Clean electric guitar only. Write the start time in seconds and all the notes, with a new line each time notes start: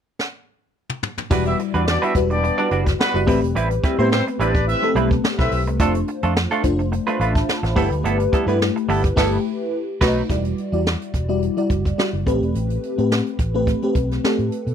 1.31 G3 D4 F#4 B4
1.46 muted clean electric guitar stroke
1.59 muted clean electric guitar stroke
1.74 G3 D4 F#4 B4
1.87 muted clean electric guitar stroke
2.02 G3 D4 F#4 B4
2.30 muted clean electric guitar stroke
2.43 muted clean electric guitar stroke
2.58 G3 D4 F#4 D5
2.71 G3 D4 F#4 D5
2.86 muted clean electric guitar stroke
3.14 muted clean electric guitar stroke
3.27 G3 C4 E4 B4
3.43 muted clean electric guitar stroke
3.55 G3 C4 E4 B4
3.71 muted clean electric guitar stroke
3.83 G3 C4 E4 B4
3.99 G3 C4 E4 C5
4.12 muted clean electric guitar stroke
4.27 muted clean electric guitar stroke
4.40 G3 C4 E4 B4
4.55 muted clean electric guitar stroke
4.83 muted clean electric guitar stroke
4.96 G3 C4 E4 B4
5.11 muted clean electric guitar stroke
5.24 muted clean electric guitar stroke
5.39 muted clean electric guitar stroke
5.67 muted clean electric guitar stroke
5.80 A3 D4 F4 A4
5.95 muted clean electric guitar stroke
6.08 muted clean electric guitar stroke
6.23 A3 D4 F4 A4
6.36 muted clean electric guitar stroke
6.51 A3 D4 F4 A4
6.79 muted clean electric guitar stroke
6.92 muted clean electric guitar stroke
7.07 A3 D4 F4 B4
7.20 A3 D4 F4 B4
7.35 muted clean electric guitar stroke
7.63 muted clean electric guitar stroke
7.76 G3 B3 E4 A4
7.92 muted clean electric guitar stroke
8.04 G3 B3 E4 A4
8.20 muted clean electric guitar stroke
8.32 G3 B3 E4 A4
8.48 G3 B3 E4 B4
8.61 muted clean electric guitar stroke
8.76 muted clean electric guitar stroke
8.89 G3 B3 E4 A4
9.04 muted clean electric guitar stroke
9.17 G3 B3 E4 A4
10.01 F#3 B3 D#4 B4